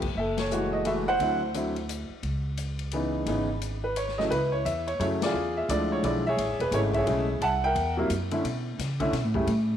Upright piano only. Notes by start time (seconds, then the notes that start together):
0.17 A4 E5
0.39 C#5
0.51 E3 G#3 A3 F#4
0.73 D#5
0.85 E3 G#3 A3 F#4 E5
1.08 C5 F#5
1.20 D3 F#3 C4 E4
1.55 D3 F#3 C4 E4
2.93 C#3 E3 B3 D#4
3.27 C#3 E3 B3 D#4
3.84 B4
3.97 C#5
4.18 C#3 F#3 A3 E4 D#5
4.30 E4 B4
4.52 C#5
4.65 E5
4.87 C#5
5.00 C#3 F#3 A3 E4 C#5
5.23 F4 G#4 D5
5.57 E5
5.70 D3 F3 G#3 E4 D5
5.92 C#5
6.03 D3 F3 G#3 E4 D5
6.27 G#4 C#5 E5
6.61 B4
6.73 C#3 G#3 A3 E4 C#5
6.94 G#4 C#5 E5
7.07 C#3 G#3 A3 E4
7.42 E5 F#5 A5
7.64 A#4 E5 G5
7.97 C3 F#3 A#3 E4
8.31 D3 A3 C#4 E4
9.00 D3 A3 C#4 E4
9.35 C#3 G3 A3 E4